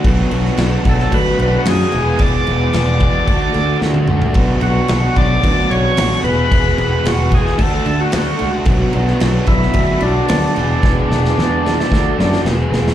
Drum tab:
CC |x-x-x-x-x-x-x-x-|x-x-x-x-x-x-----|x-x-x-x-x-x-x-x-|x-x-x-x-x-x-x-x-|
SD |---oo--o----o---|----o-------o---|----o-------o---|----o--o----o---|
T1 |----------------|-------------o--|----------------|----------------|
T2 |----------------|--------------o-|----------------|----------------|
FT |----------------|---------------o|----------------|----------------|
BD |o-----o-o-------|o-----o-o-------|o-----o-o-------|o-----o-o-------|

CC |x-x-x-x-x-x-x-x-|----------------|
SD |---oo--o----o---|o-ooo-ooo-ooo-oo|
T1 |----------------|----------------|
T2 |----------------|----------------|
FT |----------------|----------------|
BD |o-----o-o-------|o-------o-------|